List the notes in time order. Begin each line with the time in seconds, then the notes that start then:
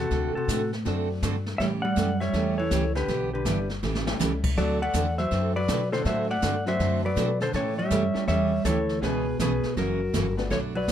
Already playing: E2
0.00 C3 F#4 A4
0.11 D2 D3 A3 C4 F#4 A4, brush sweep, kick, snare
0.35 C3 F#4 A4, muted upright bass stroke
0.48 A2 D3 A3 C4 F#4 A4, kick, snare, hi-hat pedal
0.73 snare
0.85 F#2 D3 F#3 A3 C4 D4 F#4 A4, brush sweep, kick, snare
1.22 G2 D3 A3 C4 F#4 A4, kick, snare, hi-hat pedal
1.46 snare
1.58 A2 C#3 E3 G3 A3 C#4 G4 C#5 E5, brush sweep, kick, snare
1.82 G3 D5 F#5
1.96 F#2 C#3 E3 A3 C#4 G4, kick, snare, hi-hat pedal
2.20 G3 C#5 E5, snare
2.33 E2 C#3 E3 G3 A3 C#4 E4 G4, brush sweep, kick, snare
2.58 E3 A4 C#5
2.71 C#2 C#3 E3 A3 C#4 G4, kick, snare, hi-hat pedal
2.95 D3 G4 B4, snare
3.08 B1 E3 B3 D4 G4, brush sweep, kick, snare
3.33 D3 G4 B4
3.44 G1 E3 G3 B3 D4 E4 G4, kick, snare, hi-hat pedal
3.70 snare
3.83 A1 C#3 E3 A3 C#4 G4, snare
3.95 snare
4.06 G3 A3 C#4 E4 G4, snare
4.20 C#2 C#3 E3 A3 C#4 G4, snare, hi-hat pedal
4.44 kick, crash
4.57 D2 D3 F#3 A3 C4 F#4 A4 D5, brush sweep, kick, snare
4.82 A3 D5 F#5
4.93 E2 D3 A3 C4 F#4 A4, kick, snare, hi-hat pedal
5.18 F#3 C5 E5, snare
5.31 F#2 D3 A3 C4 F#4 A4, brush sweep, kick, snare
5.56 F#3 B4 D5
5.68 B2 D3 A3 C4 F#4 A4, kick, snare, hi-hat pedal
5.92 D3 F#3 A3 C4 D4 F#4 A4 C5, snare
6.04 A2 D3 F#3 A3 C4 F#4 A4 C5 E5, brush sweep, kick, snare
6.30 A3 D5 F#5
6.42 G2 D3 A3 C4 F#4 A4, kick, snare, hi-hat pedal
6.66 F#3 A3 C4 D4 F#4 C5 E5, snare
6.79 F#2 D3 A3 C4 F#4 A4, brush sweep, kick, snare
7.05 F#3 B4 D5
7.16 B2 D3 A3 C4 F#4 A4, kick, snare, hi-hat pedal
7.40 D3 A4 C5, snare
7.53 A2 C#3 E3 A3 C#4 G4 A4 C#5, brush sweep, kick, snare
7.78 G3 C#5 E5
7.91 F#2 C#3 E3 A3 C#4 G4, kick, snare, hi-hat pedal
8.14 G3 A3 C#4 E4 G4, muted upright bass stroke, snare
8.28 E2 C#3 E3 G3 A3 C#4 G4 C#5 E5, brush sweep, kick, snare
8.65 D2 C#3 E3 A3 C#4 G4 A4 C#5, kick, snare, hi-hat pedal
8.89 snare
9.01 C#2 B2 C#3 E3 G#3 B3 C#4 E4 G#4 B4, brush sweep, kick, snare
9.39 B1 B2 C#3 E3 B3 C#4 G#4 B4, kick, snare, hi-hat pedal
9.63 muted upright bass stroke, snare
9.77 F#1 F#2 C#3 E3 A#3 C#4 F#4 A#4, brush sweep, kick, snare
10.14 G1 C#3 E3 A#3 C#4 F#4, kick, snare, hi-hat pedal
10.37 A3 B3 D4 F#4 B4, snare
10.50 B1 B2 D3 F#3 A3 D4 F#4 A4 C#5, brush sweep, kick, snare
10.75 F#3 B4 D5
10.88 D#2 F#3, kick, snare, hi-hat pedal